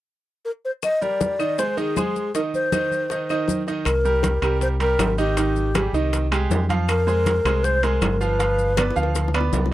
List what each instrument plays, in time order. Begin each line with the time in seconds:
0.45 alto flute A#4
0.65 alto flute C5
0.83 alto flute D#5, high bongo, high conga, claves, maracas
1.01 grand piano G3 G4 A#4, alto flute D5, high conga, maracas
1.21 high bongo, high conga, maracas
1.39 grand piano D#3 D#4 D#5, high bongo, high conga, claves, maracas
1.58 grand piano G#3 G#4 C5, alto flute C5, high bongo, high conga, maracas
1.77 grand piano D#3 D#4 D#5, alto flute G#4, high bongo, high conga, maracas
1.96 grand piano G#3 G#4 C5, high bongo, low bongo, high conga, claves, maracas
2.16 high bongo, high conga, maracas
2.35 grand piano D#3 D#4 D#5, alto flute A#4, high bongo, high conga, maracas
2.54 alto flute C5, high conga, maracas
2.72 grand piano D#3 D#4 D#5, high bongo, high conga, claves, maracas
2.92 high bongo, high conga, maracas
3.10 grand piano D#3 D#4 D#5, high bongo, high conga, maracas
3.29 grand piano D#3 D#4 D#5, high bongo, high conga, claves, maracas
3.48 high bongo, low bongo, high conga, maracas
3.67 grand piano D#3 D#4 D#5, high bongo, maracas
3.85 fingered electric bass C2, alto flute A#4, high bongo, high conga, high timbale, claves, maracas
4.05 grand piano G3 G4 A#4, high conga, maracas
4.23 high bongo, high conga, high timbale, low timbale, maracas
4.42 fingered electric bass C2, grand piano G3 G4 A#4, high bongo, high conga, high timbale, claves, maracas
4.61 alto flute C5, high bongo, high conga, maracas
4.80 grand piano G3 G4 A#4, alto flute A#4, high bongo, high conga, high timbale, maracas
4.98 fingered electric bass G#1, high bongo, low bongo, high conga, high timbale, low timbale, claves, maracas
5.18 grand piano D#3 D#4 D#5, alto flute G4, high bongo, high conga, maracas
5.37 grand piano D#3 D#4 D#5, high bongo, high conga, high timbale, maracas
5.56 high conga, maracas
5.75 grand piano G3 G4 G#4, high bongo, high conga, high timbale, low timbale, claves, maracas
5.93 fingered electric bass C2, grand piano D#3 D#4 D#5, high bongo, high conga, maracas
6.13 high bongo, high conga, high timbale, maracas
6.32 grand piano G#3 G4 G#4, high bongo, high conga, high timbale, claves, maracas
6.50 fingered electric bass F2, high bongo, low bongo, high conga, low timbale, maracas
6.69 grand piano F3 F4 F5, high bongo, high conga, high timbale, maracas
6.89 alto flute A#4, high bongo, high conga, high timbale, claves, maracas
7.07 grand piano G#3 G#4 C5, high conga, maracas
7.26 high bongo, high conga, high timbale, low timbale, maracas
7.45 fingered electric bass C2, grand piano G#3 G#4 C5, high bongo, high conga, high timbale, claves, maracas
7.64 alto flute C5, high bongo, high conga, maracas
7.83 grand piano G#3 G#4 C5, alto flute A#4, high bongo, high conga, high timbale, maracas
8.01 fingered electric bass G1, high bongo, low bongo, high conga, high timbale, low timbale, claves, maracas
8.21 grand piano F3 F4 F5, alto flute B4, high bongo, maracas
8.39 grand piano F3 F4 F5, high bongo, high conga, high timbale, maracas
8.59 high conga, maracas
8.77 grand piano B3 B4 D5, high bongo, high conga, high timbale, low timbale, claves, maracas
8.91 high bongo
8.96 fingered electric bass D2, grand piano F3 F4 F5, high conga, maracas
9.03 high bongo
9.15 high bongo, high conga, high timbale, maracas
9.28 low bongo
9.34 grand piano B3 B4 D5, high conga, high timbale, claves, maracas
9.40 low bongo
9.53 fingered electric bass C2, low bongo, high conga, low timbale, maracas
9.66 low bongo